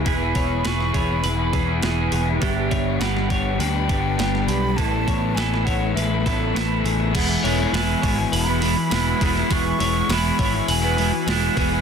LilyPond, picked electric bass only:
\new Staff \with { instrumentName = "Picked electric bass" } { \clef bass \time 4/4 \key e \major \tempo 4 = 102 e,,8 e,,8 e,,8 e,,8 e,,8 e,,8 e,,8 e,,8 | g,,8 g,,8 g,,8 r8 d,8 g,,8 g,,8 b,,8 | a,,8 a,,8 a,,8 a,,8 a,,8 a,,8 a,,8 a,,8 | e,,8 e,,8 e,,8 gis,,8 e,,4 e,,8 e,,8 |
e,,8 e,,8 e,,8 gis,,8 e,,4 e,,8 e,,8 | }